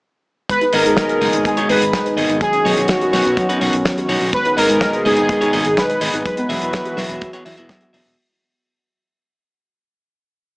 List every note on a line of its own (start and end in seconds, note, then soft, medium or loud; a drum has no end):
0.49 2.40 B2 medium
0.49 4.30 D#3 medium
0.49 2.40 G#3 medium
0.49 0.61 G#3 medium
0.49 2.40 D#4 medium
0.49 2.40 G#4 medium
0.49 0.72 B4 loud
0.49 kick loud
0.49 closed hi-hat medium
0.61 0.70 D#4 loud
0.61 closed hi-hat soft
0.73 0.83 G#1 medium
0.73 0.85 G#3 medium
0.73 1.19 B3 medium
0.73 1.19 D#4 medium
0.73 1.19 G#4 medium
0.73 1.48 A#4 loud
0.73 1.19 D#5 medium
0.73 open hi-hat loud
0.85 0.94 G#2 medium
0.85 0.94 G#4 medium
0.85 closed hi-hat medium
0.97 1.09 G#3 medium
0.97 kick loud
0.97 snare loud
0.97 closed hi-hat medium
1.09 1.14 B4 medium
1.09 closed hi-hat soft
1.21 1.31 F#1 medium
1.21 1.26 G#3 medium
1.21 1.55 B3 medium
1.21 1.55 D#4 medium
1.21 1.55 G#4 medium
1.21 1.55 D#5 medium
1.21 open hi-hat loud
1.33 1.43 G#1 medium
1.33 1.38 D#4 medium
1.33 closed hi-hat medium
1.45 1.57 G#3 medium
1.45 1.70 G#4 medium
1.45 kick loud
1.45 closed hi-hat medium
1.57 1.68 B3 medium
1.57 1.66 D#4 loud
1.57 1.68 D#4 medium
1.57 1.68 G#4 medium
1.57 1.68 C#5 medium
1.57 closed hi-hat soft
1.69 1.79 G#1 medium
1.69 1.81 G#3 medium
1.69 1.82 B3 medium
1.69 1.82 D#4 medium
1.69 1.83 G#4 medium
1.69 2.14 B4 loud
1.69 1.82 D#5 loud
1.69 open hi-hat loud
1.81 1.90 G#1 medium
1.81 1.90 G#4 medium
1.81 closed hi-hat medium
1.93 2.05 G#3 medium
1.93 kick loud
1.93 snare loud
1.93 closed hi-hat medium
2.05 2.10 B4 medium
2.05 closed hi-hat soft
2.17 2.27 G#1 medium
2.17 2.23 G#3 medium
2.17 2.38 B3 medium
2.17 2.38 D#4 medium
2.17 2.38 G#4 medium
2.17 2.38 D#5 loud
2.17 open hi-hat loud
2.29 2.38 G#1 medium
2.29 2.34 D#4 medium
2.29 closed hi-hat medium
2.41 2.53 F#3 medium
2.41 4.32 F#3 medium
2.41 4.32 B3 medium
2.41 4.32 C#4 medium
2.41 4.32 F#4 medium
2.41 2.86 G#4 loud
2.41 kick loud
2.41 closed hi-hat medium
2.53 2.62 C#4 loud
2.53 closed hi-hat soft
2.65 2.74 B1 medium
2.65 2.77 F#3 medium
2.65 3.11 B3 medium
2.65 3.11 D#4 medium
2.65 3.11 F#4 medium
2.65 3.11 C#5 loud
2.65 open hi-hat loud
2.77 2.87 B1 medium
2.77 2.86 D#4 medium
2.77 closed hi-hat medium
2.88 3.01 F#3 medium
2.88 4.05 F#4 loud
2.88 kick loud
2.88 snare loud
2.88 closed hi-hat medium
3.01 3.06 F#4 medium
3.01 closed hi-hat soft
3.13 3.23 B1 medium
3.13 3.18 F#3 medium
3.13 3.47 B3 medium
3.13 3.47 D#4 medium
3.13 3.47 F#4 medium
3.13 3.47 C#5 medium
3.13 snare medium
3.13 open hi-hat loud
3.25 3.34 B1 medium
3.25 3.31 C#4 medium
3.25 closed hi-hat medium
3.37 3.49 F#3 medium
3.37 kick loud
3.37 closed hi-hat medium
3.49 3.60 B3 medium
3.49 3.58 C#4 loud
3.49 3.60 D#4 medium
3.49 3.60 F#4 medium
3.49 3.60 B4 medium
3.49 closed hi-hat medium
3.61 3.70 B1 medium
3.61 3.73 F#3 medium
3.61 3.74 B3 medium
3.61 3.74 D#4 medium
3.61 3.74 F#4 medium
3.61 3.74 C#5 loud
3.61 open hi-hat medium
3.73 3.82 B1 medium
3.73 closed hi-hat medium
3.85 3.97 F#3 loud
3.85 kick loud
3.85 snare loud
3.85 closed hi-hat medium
3.97 4.02 F#4 medium
3.97 closed hi-hat soft
4.09 4.18 B1 medium
4.09 4.15 F#3 medium
4.09 4.30 B3 medium
4.09 4.30 D#4 medium
4.09 4.30 F#4 medium
4.09 4.30 C#5 loud
4.09 open hi-hat loud
4.21 4.31 B1 medium
4.21 4.27 C#4 medium
4.21 open hi-hat medium
4.33 6.24 B2 medium
4.33 6.24 D#3 medium
4.33 8.14 G#3 medium
4.33 4.45 G#3 medium
4.33 6.23 D#4 medium
4.33 6.24 G#4 medium
4.33 4.58 B4 loud
4.33 kick loud
4.33 closed hi-hat medium
4.45 4.54 D#4 loud
4.45 closed hi-hat soft
4.57 4.66 G#1 medium
4.57 4.69 G#3 medium
4.57 5.03 B3 medium
4.57 5.03 D#4 medium
4.57 5.02 G#4 medium
4.57 5.02 A#4 loud
4.57 5.02 D#5 loud
4.57 open hi-hat loud
4.69 4.78 G#2 medium
4.69 4.78 G#4 medium
4.69 closed hi-hat medium
4.81 4.93 G#3 loud
4.81 kick loud
4.81 snare loud
4.81 closed hi-hat medium
4.93 4.99 B4 medium
4.93 closed hi-hat soft
5.05 5.14 F#1 medium
5.05 5.11 G#3 medium
5.05 5.39 B3 medium
5.05 5.39 D#4 medium
5.05 5.80 G#4 loud
5.05 5.39 G#4 medium
5.05 5.39 D#5 medium
5.05 open hi-hat loud
5.17 5.26 G#1 medium
5.17 5.23 D#4 medium
5.17 closed hi-hat medium
5.29 5.41 G#3 medium
5.29 kick loud
5.29 closed hi-hat medium
5.41 5.52 B3 medium
5.41 5.50 D#4 loud
5.41 5.52 D#4 medium
5.41 5.52 G#4 medium
5.41 5.52 C#5 medium
5.41 closed hi-hat soft
5.53 5.62 G#1 loud
5.53 5.65 G#3 medium
5.53 5.66 B3 medium
5.53 5.66 D#4 medium
5.53 5.66 G#4 medium
5.53 5.66 D#5 loud
5.53 open hi-hat loud
5.65 5.74 G#1 medium
5.65 5.74 G#4 medium
5.65 closed hi-hat medium
5.77 5.89 G#3 loud
5.77 6.25 B4 loud
5.77 kick loud
5.77 snare loud
5.77 closed hi-hat medium
5.90 5.95 B4 medium
5.90 closed hi-hat soft
6.01 6.10 G#1 medium
6.01 6.07 G#3 medium
6.01 6.22 B3 medium
6.01 6.22 D#4 medium
6.01 6.22 G#4 medium
6.01 6.22 D#5 loud
6.01 open hi-hat loud
6.14 6.23 G#1 medium
6.14 6.19 D#4 medium
6.14 closed hi-hat medium
6.25 8.15 E3 medium
6.25 8.16 F#3 medium
6.25 6.37 F#3 medium
6.25 8.16 B3 medium
6.25 8.15 F#4 medium
6.25 7.66 B4 loud
6.25 kick loud
6.25 closed hi-hat medium
6.37 6.46 B3 loud
6.37 closed hi-hat soft
6.49 6.58 E1 medium
6.49 6.61 F#3 medium
6.49 6.95 B3 medium
6.49 6.95 F#4 medium
6.49 6.95 G#4 medium
6.49 6.95 E5 loud
6.49 open hi-hat loud
6.61 6.70 E1 medium
6.61 6.70 E4 medium
6.61 closed hi-hat medium
6.73 6.85 F#3 loud
6.73 kick loud
6.73 snare loud
6.73 closed hi-hat medium
6.85 6.91 F#4 medium
6.85 closed hi-hat soft
6.97 7.07 E1 medium
6.97 7.03 F#3 medium
6.97 7.31 B3 medium
6.97 7.31 F#4 medium
6.97 7.31 G#4 medium
6.97 7.31 E5 medium
6.97 snare medium
6.97 open hi-hat loud
7.09 7.18 E1 medium
7.09 7.14 B3 medium
7.09 kick medium
7.09 closed hi-hat medium
7.21 7.33 F#3 medium
7.21 kick loud
7.21 closed hi-hat medium
7.33 7.42 B3 loud
7.33 7.43 B3 medium
7.33 7.43 F#4 medium
7.33 7.43 G#4 medium
7.33 7.43 C#5 loud
7.33 closed hi-hat soft
7.45 7.55 E2 medium
7.45 7.57 F#3 medium
7.45 7.55 B3 medium
7.45 7.55 F#4 medium
7.45 7.55 G#4 medium
7.45 7.55 E5 medium
7.45 open hi-hat loud
7.57 7.67 E1 medium
7.57 7.91 B3 medium
7.57 7.66 E4 medium
7.57 7.91 F#4 medium
7.57 7.91 G#4 medium
7.57 7.91 E5 medium
7.57 closed hi-hat medium
7.69 7.81 F#3 loud
7.69 kick loud
7.69 snare loud
7.69 closed hi-hat medium
7.81 7.86 F#4 medium
7.81 closed hi-hat soft
7.93 8.03 E1 medium
7.93 7.98 F#3 medium
7.93 8.16 B3 medium
7.93 8.16 F#4 medium
7.93 8.16 G#4 medium
7.93 8.16 E5 loud
7.93 open hi-hat loud
8.05 8.15 E1 medium
8.05 8.10 B3 medium
8.05 open hi-hat medium